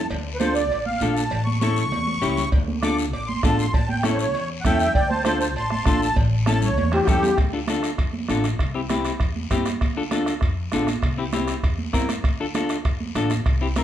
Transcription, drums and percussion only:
0.10 cowbell, high conga, long guiro
0.40 cowbell, high conga, short guiro
0.55 short guiro
0.70 cowbell, high conga, long guiro
0.86 high conga
1.00 cowbell, high conga, short guiro
1.17 short guiro
1.30 cowbell, high conga, long guiro
1.47 high conga
1.61 cowbell, high conga, short guiro
1.76 short guiro
1.92 cowbell, high conga, long guiro
2.07 high conga
2.22 cowbell, low conga, short guiro
2.37 low conga, short guiro
2.52 bombo low, cowbell, high conga, long guiro
2.68 high conga
2.83 bombo rim, cowbell, high conga, short guiro
2.98 short guiro
3.13 cowbell, high conga, long guiro
3.29 high conga
3.43 bombo low, bombo rim, cowbell, high conga, low timbale, short guiro
3.59 short guiro
3.74 bombo low, cowbell, high conga, long guiro
3.89 high conga
4.03 bombo rim, cowbell, high conga, short guiro
4.19 short guiro
4.35 cowbell, high conga, long guiro
4.64 bombo low, bombo rim, cowbell, high conga, low conga, short guiro
4.79 short guiro
4.95 bombo low, cowbell, high conga, long guiro
5.11 high conga
5.25 bombo rim, cowbell, high conga, short guiro
5.41 short guiro
5.56 cowbell, high conga, long guiro
5.70 bombo rim, high conga
5.85 bombo low, bombo rim, cowbell, high conga, short guiro
6.02 short guiro
6.16 bombo low, cowbell, high conga, long guiro
6.46 bombo rim, cowbell, high conga, short guiro
6.62 low conga, short guiro
6.77 cowbell, high conga, long guiro
6.92 bombo rim, high conga, high timbale
7.07 bombo low, bombo rim, cowbell, low conga, short guiro
7.23 low conga, low timbale, short guiro
7.38 bombo low, bombo rim, high timbale, long guiro
7.53 high conga
7.68 bombo rim, high conga, high timbale, short guiro
7.83 bombo rim, high timbale, short guiro
7.98 bombo low, bombo rim, high conga, high timbale, long guiro
8.13 high conga
8.28 bombo rim, high conga, high timbale, low timbale, short guiro
8.44 bombo rim, high timbale, short guiro
8.59 bombo low, bombo rim, high timbale, long guiro
8.75 high conga
8.89 bombo rim, high conga, high timbale, short guiro
9.05 bombo rim, high timbale, short guiro
9.20 bombo low, bombo rim, high conga, high timbale, long guiro
9.36 high conga
9.51 bombo low, bombo rim, high conga, high timbale, short guiro
9.65 bombo rim, high conga, high timbale, short guiro
9.81 bombo low, bombo rim, high timbale, long guiro
9.97 high conga
10.11 bombo rim, high conga, high timbale, short guiro
10.26 bombo rim, high timbale, short guiro
10.41 bombo low, bombo rim, high conga, high timbale, long guiro
10.72 bombo rim, high conga, high timbale, low timbale, short guiro
10.87 bombo rim, high conga, high timbale, short guiro
11.02 bombo low, bombo rim, high timbale, long guiro
11.19 high conga
11.32 bombo rim, high conga, high timbale, short guiro
11.48 bombo rim, high timbale, short guiro
11.63 bombo low, bombo rim, high conga, high timbale, long guiro
11.78 high conga
11.93 bombo low, bombo rim, high conga, high timbale, low timbale, short guiro
12.09 bombo rim, high conga, high timbale, short guiro
12.24 bombo low, bombo rim, high timbale, long guiro
12.40 high conga
12.54 bombo rim, high conga, high timbale, short guiro
12.69 bombo rim, high timbale, short guiro
12.85 bombo low, bombo rim, high conga, high timbale, long guiro
13.00 high conga
13.15 bombo rim, high conga, high timbale, short guiro
13.30 bombo rim, high conga, high timbale, short guiro
13.46 bombo low, bombo rim, high timbale, long guiro
13.61 high conga
13.76 bombo rim, high conga, high timbale, short guiro

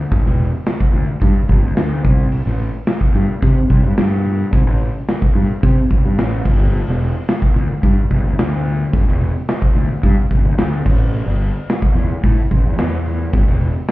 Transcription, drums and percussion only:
0.12 kick, open hi-hat
0.26 snare
0.39 open hi-hat
0.66 snare, open hi-hat
0.80 kick
0.94 open hi-hat
1.21 kick, open hi-hat
1.48 kick, open hi-hat
1.77 snare, open hi-hat
2.05 kick, open hi-hat
2.32 open hi-hat
2.46 snare
2.60 open hi-hat
2.87 snare, open hi-hat
3.01 kick
3.15 open hi-hat
3.42 kick, open hi-hat
3.70 kick, open hi-hat
3.98 snare, open hi-hat
4.26 open hi-hat
4.53 kick, open hi-hat
4.81 open hi-hat
5.08 snare, open hi-hat
5.22 kick
5.37 open hi-hat
5.63 kick, open hi-hat
5.91 kick, open hi-hat
6.18 snare, open hi-hat
6.45 kick, crash
6.87 snare
7.01 open hi-hat
7.28 snare, open hi-hat
7.42 kick
7.56 open hi-hat
7.83 kick, open hi-hat
8.11 kick, open hi-hat
8.39 snare, open hi-hat
8.66 open hi-hat
8.93 kick, open hi-hat
9.08 snare
9.21 open hi-hat
9.49 snare, open hi-hat
9.62 kick
9.76 open hi-hat
10.03 kick, open hi-hat
10.31 kick, open hi-hat
10.58 snare, open hi-hat
10.86 kick, crash
11.41 open hi-hat
11.70 snare, open hi-hat
11.82 kick
11.97 open hi-hat
12.24 kick, open hi-hat
12.51 kick, open hi-hat
12.78 snare, open hi-hat
13.06 open hi-hat
13.33 kick, open hi-hat
13.47 snare
13.61 open hi-hat
13.88 snare, open hi-hat

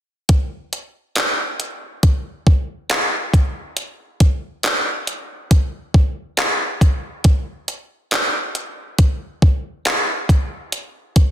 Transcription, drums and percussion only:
0.29 kick, closed hi-hat
0.73 closed hi-hat
1.16 clap, closed hi-hat
1.60 closed hi-hat
2.03 kick, closed hi-hat
2.47 kick
2.90 clap, closed hi-hat
3.34 kick, closed hi-hat
3.77 closed hi-hat
4.20 kick, closed hi-hat
4.63 clap, closed hi-hat
5.07 closed hi-hat
5.51 kick, closed hi-hat
5.94 kick
6.37 clap, closed hi-hat
6.81 kick, closed hi-hat
7.24 kick, closed hi-hat
7.68 closed hi-hat
8.11 clap, closed hi-hat
8.55 closed hi-hat
8.98 kick, closed hi-hat
9.42 kick
9.85 clap, closed hi-hat
10.29 kick, closed hi-hat
10.72 closed hi-hat
11.16 kick, closed hi-hat

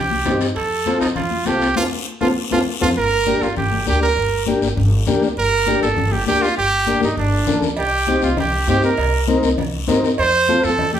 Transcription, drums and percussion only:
0.11 high conga
0.25 high conga, low conga, high timbale, low timbale, short guiro
0.41 high timbale, short guiro
0.56 high timbale, long guiro
0.86 high conga, high timbale, short guiro
1.01 high timbale, short guiro
1.16 low conga, high timbale, long guiro
1.31 high conga
1.46 high conga, high timbale, low timbale, short guiro
1.62 high timbale, short guiro
1.76 high conga, high timbale, long guiro
2.21 high conga, high timbale, long guiro
2.51 high conga, high timbale, long guiro
2.81 high conga, high timbale, long guiro
2.96 long guiro
3.26 high conga, short guiro
3.42 short guiro
3.56 low conga, long guiro
3.72 high conga
3.87 high conga, short guiro
4.02 short guiro
4.17 long guiro
4.46 high conga, short guiro
4.62 short guiro
4.77 low conga, long guiro
5.07 high conga, low conga, short guiro
5.22 short guiro
5.37 long guiro
5.67 high conga, short guiro
5.83 short guiro
5.97 low conga, long guiro
6.12 high conga
6.26 high conga, short guiro
6.43 short guiro
6.59 long guiro
6.87 high conga, short guiro
7.01 high conga, short guiro
7.18 long guiro
7.47 low conga, short guiro
7.62 low conga, short guiro
7.77 cowbell, long guiro
8.07 high conga, short guiro
8.22 short guiro
8.37 cowbell, low conga, long guiro
8.67 high conga, low timbale, short guiro
8.82 short guiro
8.97 cowbell, long guiro
9.28 high conga, short guiro
9.43 short guiro
9.58 cowbell, low conga, long guiro
9.88 high conga, low conga, low timbale, short guiro
10.04 short guiro
10.18 cowbell, long guiro
10.48 high conga, short guiro
10.63 short guiro
10.78 cowbell, low conga, long guiro
10.93 high conga

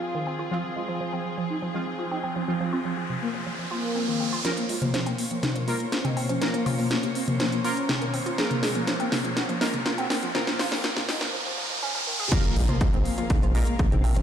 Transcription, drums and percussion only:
4.45 snare, closed hi-hat
4.57 closed hi-hat
4.69 open hi-hat
4.82 closed hi-hat, mid tom
4.94 snare, closed hi-hat
5.06 closed hi-hat
5.18 open hi-hat
5.31 closed hi-hat
5.43 snare, closed hi-hat, mid tom
5.56 closed hi-hat
5.68 open hi-hat
5.80 closed hi-hat
5.92 snare, closed hi-hat
6.05 closed hi-hat, mid tom
6.17 open hi-hat
6.29 closed hi-hat
6.42 snare, closed hi-hat
6.54 closed hi-hat
6.66 open hi-hat, mid tom
6.79 open hi-hat
6.91 snare, closed hi-hat
7.03 closed hi-hat
7.15 open hi-hat
7.28 closed hi-hat, mid tom
7.40 snare, closed hi-hat
7.52 closed hi-hat
7.65 open hi-hat
7.77 closed hi-hat
7.89 snare, closed hi-hat, mid tom
8.02 closed hi-hat
8.14 open hi-hat
8.26 closed hi-hat
8.38 snare, closed hi-hat
8.51 closed hi-hat, mid tom
8.63 snare, open hi-hat
8.75 closed hi-hat
8.87 snare, closed hi-hat
9.00 closed hi-hat
9.12 snare, open hi-hat, mid tom
9.25 closed hi-hat
9.37 snare, closed hi-hat
9.49 closed hi-hat
9.61 snare, open hi-hat
9.74 closed hi-hat, mid tom
9.86 snare, closed hi-hat
9.98 closed hi-hat
10.10 snare, open hi-hat
10.23 closed hi-hat
10.35 snare, closed hi-hat, mid tom
10.47 snare, closed hi-hat
10.59 snare, open hi-hat
10.72 snare, open hi-hat
10.84 snare, closed hi-hat
10.97 snare, closed hi-hat, mid tom
11.09 snare, open hi-hat
11.21 snare, closed hi-hat
12.32 kick, closed hi-hat, crash
12.44 closed hi-hat
12.56 open hi-hat
12.69 closed hi-hat, mid tom
12.81 kick, closed hi-hat
12.93 closed hi-hat
13.05 open hi-hat
13.18 closed hi-hat
13.30 kick, closed hi-hat, mid tom
13.43 closed hi-hat
13.55 open hi-hat
13.67 closed hi-hat
13.79 kick, closed hi-hat
13.92 closed hi-hat, mid tom
14.04 open hi-hat
14.16 closed hi-hat

